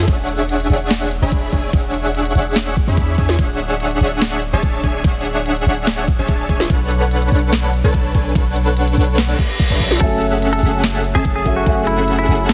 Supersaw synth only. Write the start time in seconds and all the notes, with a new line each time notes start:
0.08 D4 G#4 C#5 E5 F#5
0.70 D4 G#4 C#5 E5 F#5
1.22 D4 G#4 C#5 E5 B5
1.53 D4 G#4 C#5 E5 G#5
1.73 D4 G#4 C#5 E5 F#5
2.35 D4 G#4 C#5 E5 F#5
2.88 D4 G#4 C#5 E5 B5
3.18 D4 G#4 C#5 E5 G#5
3.39 D4 G#4 C#5 E5 F#5
4.01 D4 G#4 C#5 E5 F#5
4.53 D4 G#4 C#5 E5 A5
4.84 D4 G#4 C#5 E5 G#5
5.04 D4 G#4 C#5 E5 F#5
5.66 D4 G#4 C#5 E5 F#5
6.19 D4 G#4 C#5 E5 A5
6.49 D4 G#4 C#5 E5 G#5
6.70 D4 A4 B4 C#5 F#5
7.32 D4 A4 B4 C#5 F#5
7.84 D4 A4 B4 C#5 A5
8.15 D4 A4 B4 C#5 G#5
8.35 D4 A4 B4 C#5 F#5
8.97 D4 A4 B4 C#5 F#5
9.70 D4 A4 B4 C#5 E5
10.01 C#4 G#4 A4 E5 F#5
10.63 C#4 G#4 A4 E5 F#5
11.15 C#4 G#4 A4 E5 A5
11.46 C#4 G#4 A4 E5 G#5
11.66 C#4 G#4 A4 E5 F#5
12.28 C#4 G#4 A4 E5 F#5